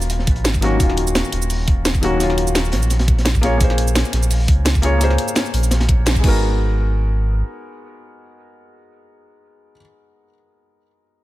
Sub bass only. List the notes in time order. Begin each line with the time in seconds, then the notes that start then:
Already playing: D#1
0.27 A#1
0.45 G#1
0.80 D#1
1.32 D#1
2.73 A#1
3.43 A#1
4.13 A#1
4.48 C#2
5.53 A#1
5.98 A#1
6.24 G#1